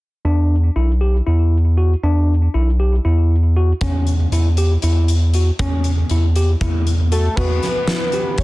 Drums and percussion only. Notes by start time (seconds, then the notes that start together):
3.81 kick, closed hi-hat
4.07 closed hi-hat
4.32 closed hi-hat
4.57 closed hi-hat
4.82 closed hi-hat
5.08 closed hi-hat
5.34 closed hi-hat
5.59 kick, closed hi-hat
5.84 closed hi-hat
6.10 closed hi-hat
6.36 closed hi-hat
6.61 kick, closed hi-hat
6.87 closed hi-hat
7.12 closed hi-hat
7.37 kick, crash
7.63 snare, closed hi-hat
7.88 snare, closed hi-hat
8.12 closed hi-hat
8.38 kick, closed hi-hat